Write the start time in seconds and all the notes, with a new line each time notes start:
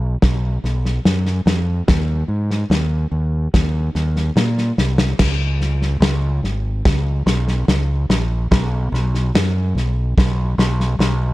Already playing: B1
0.22 B1, kick, snare
0.64 B1, snare
0.85 snare
1.05 F#2, snare
1.26 snare
1.46 F2, snare
1.88 D#2, kick, snare
2.28 G#2
2.51 snare
2.70 D#2, snare
3.12 D#2
3.54 D#2, kick, snare
3.95 D#2, snare
4.16 snare
4.36 A#2, snare
4.58 snare
4.78 C2, snare
4.98 snare
5.19 C#2, kick, snare, crash
5.61 snare
5.82 snare
6.00 C#2, snare
6.43 G#1, snare
6.85 C#2, kick, snare
7.26 B1, snare
7.48 snare
7.68 C#2, snare
8.10 A#1, snare
8.51 B1, kick, snare
8.92 B1, snare
9.15 snare
9.34 F#2, snare
9.75 B1, snare
10.17 B1, kick, snare
10.58 B1, snare
10.80 snare
10.99 B1, snare